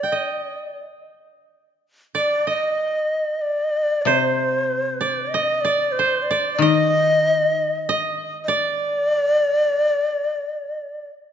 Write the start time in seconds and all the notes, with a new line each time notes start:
Already playing: C5 D5
0.03 G5
0.12 D#5
2.15 D5
2.47 D#5
3.41 D5
4.02 C3 C5
4.07 C5
5.01 D5
5.30 D#5
5.34 D#5
5.61 D5
5.92 C5
5.99 C5
6.22 D5
6.31 D5
6.53 D#5
6.59 D#3 D#5
7.89 D#5
8.44 D5 D#5